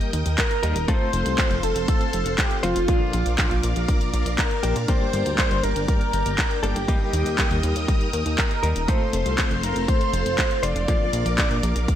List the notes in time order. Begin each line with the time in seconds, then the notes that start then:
Already playing: G3 A#3 D#4 G4 A#4 D#5 G5 D#6
0.01 closed hi-hat
0.13 D#2, closed hi-hat
0.26 D#2, closed hi-hat
0.38 A#4, kick, clap, closed hi-hat
0.51 closed hi-hat
0.63 D#2 G3 A#3 D#4 A#4, closed hi-hat
0.76 D#1, closed hi-hat
0.88 A3 C4 F4 A4 C5 F5 C6, kick, closed hi-hat
1.13 F1, closed hi-hat
1.26 C2, closed hi-hat
1.38 kick, clap, closed hi-hat
1.51 F1, closed hi-hat
1.63 F1 A4, closed hi-hat
1.76 F1, closed hi-hat
1.88 A4, kick, closed hi-hat
2.01 closed hi-hat
2.13 F1, closed hi-hat
2.26 F1, closed hi-hat
2.38 G4, kick, clap, closed hi-hat
2.51 closed hi-hat
2.63 F1 A3 C4 F4 C5, closed hi-hat
2.76 F1, closed hi-hat
2.88 A#2 F3 A#3 D4 F4 A#4 D5 F5 D6, kick, closed hi-hat
3.13 A#1, closed hi-hat
3.26 A#1, closed hi-hat
3.38 kick, clap, closed hi-hat
3.51 A#1, closed hi-hat
3.63 A#1, closed hi-hat
3.76 A#1, closed hi-hat
3.88 kick, closed hi-hat
4.01 closed hi-hat
4.14 A#1, closed hi-hat
4.26 A#1, closed hi-hat
4.38 A#4, kick, clap, closed hi-hat
4.51 closed hi-hat
4.63 A#1 F3 A#3 D4 G4, closed hi-hat
4.76 A#2, closed hi-hat
4.88 G2 G3 A#3 D4 G4 C5 G5, kick, closed hi-hat
5.13 G1, closed hi-hat
5.26 D2, closed hi-hat
5.38 C5, kick, clap, closed hi-hat
5.51 G1, closed hi-hat
5.63 G1 A#4, closed hi-hat
5.76 G1, closed hi-hat
5.88 A#4, kick, closed hi-hat
6.01 closed hi-hat
6.13 G1, closed hi-hat
6.26 G1, closed hi-hat
6.38 kick, clap, closed hi-hat
6.51 closed hi-hat
6.63 G1 G3 A#3 D4 G4 A4, closed hi-hat
6.76 G1, closed hi-hat
6.88 G3 A#3 D#4 G4 A#4 D#5 D#6, kick, closed hi-hat
7.13 D#2, closed hi-hat
7.26 D#2, closed hi-hat
7.38 kick, clap, closed hi-hat
7.51 D#2, closed hi-hat
7.63 D#2, closed hi-hat
7.76 D#2, closed hi-hat
7.88 kick, closed hi-hat
8.01 closed hi-hat
8.13 D#2, closed hi-hat
8.26 D#2, closed hi-hat
8.38 A#4, kick, clap, closed hi-hat
8.51 closed hi-hat
8.63 D#2 G3 A#3 D#4 A#4, closed hi-hat
8.76 D#1, closed hi-hat
8.88 A3 C4 F4 A4 C5 F5 C6, kick, closed hi-hat
9.13 F1, closed hi-hat
9.26 C2, closed hi-hat
9.38 kick, clap, closed hi-hat
9.51 F1, closed hi-hat
9.63 F1 A#4, closed hi-hat
9.76 F1, closed hi-hat
9.88 C5, kick, closed hi-hat
10.01 closed hi-hat
10.13 F1, closed hi-hat
10.26 F1, closed hi-hat
10.38 kick, clap, closed hi-hat
10.51 closed hi-hat
10.63 F1 A3 C4 F4 C5 D5, closed hi-hat
10.76 F1, closed hi-hat
10.88 A#2 F3 A#3 D4 F4 A#4 D5 D6, kick, closed hi-hat
11.13 A#1, closed hi-hat
11.26 A#1, closed hi-hat
11.38 kick, clap, closed hi-hat
11.51 A#1, closed hi-hat
11.63 A#1, closed hi-hat
11.76 A#1, closed hi-hat
11.88 A4 D5 F#5 D6, kick, closed hi-hat